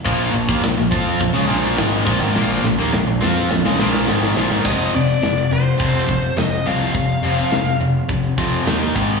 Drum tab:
CC |x---------------|----------------|x---------------|----------------|
HH |----o---o---o---|----------------|----o---o---o---|o---o---o---o---|
SD |----o------oo---|o-o-o-o-oooooooo|----o-------o---|----o-------o---|
BD |o--o--o-o-----o-|----------------|o-------o-o-----|o-------o-o---o-|